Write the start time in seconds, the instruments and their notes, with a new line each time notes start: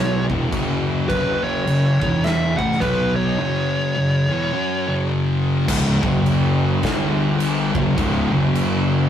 Already playing: fingered electric bass B1, distorted electric guitar B2 F#3 B3, lead electric guitar C#5
0.30 fingered electric bass E1, distorted electric guitar E2 B2 E3, kick
0.52 fingered electric bass F#1, distorted electric guitar F#2 C#3 F#3, kick, crash
1.09 fingered electric bass F#1, distorted electric guitar F#2 C#3 F#3, lead electric guitar B4, kick, crash
1.44 lead electric guitar C#5
1.67 fingered electric bass F#1, distorted electric guitar F#2 C#3, crash
2.01 fingered electric bass E1, distorted electric guitar E2 B2 E3, kick
2.24 lead electric guitar E5, snare, crash
2.57 fingered electric bass A1, distorted electric guitar A2 E3 A3, lead electric guitar F#5, kick
2.72 snare
2.80 fingered electric bass B1, distorted electric guitar B2 F#3 B3, lead electric guitar B4, kick, crash
3.16 lead electric guitar C#5
3.39 distorted electric guitar F#2 C#3 F#3
3.96 distorted electric guitar F#2 C#3
4.29 distorted electric guitar E2 B2 E3
4.53 distorted electric guitar F#3 C#4 F#4
4.87 distorted electric guitar F#2 C#3 F#3
5.68 fingered electric bass C#1, distorted electric guitar C#2 G#2 C#3, kick, crash
6.02 fingered electric bass F#1, distorted electric guitar F#2 C#3 F#3, kick
6.26 crash
6.83 fingered electric bass G1, distorted electric guitar G2 D3 G3, kick, snare, crash
7.40 crash
7.75 fingered electric bass F#1, distorted electric guitar F#2 C#3 F#3, kick
7.98 fingered electric bass C#1, distorted electric guitar C#2 G#2 C#3, kick, crash
8.31 fingered electric bass F#1, distorted electric guitar F#2 C#3 F#3
8.55 crash